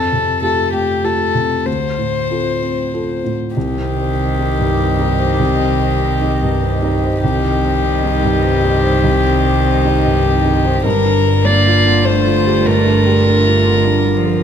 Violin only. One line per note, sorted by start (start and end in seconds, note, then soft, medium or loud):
0.00 0.43 A4 soft
0.43 0.73 A4 soft
0.73 1.06 G4 soft
1.04 1.68 A4 soft
1.67 3.35 C5 soft
3.56 7.19 G4 soft
7.22 10.81 G4 medium
10.85 11.46 A#4 medium
11.45 12.07 D5 medium
12.05 12.68 C5 medium
12.66 14.43 A#4 medium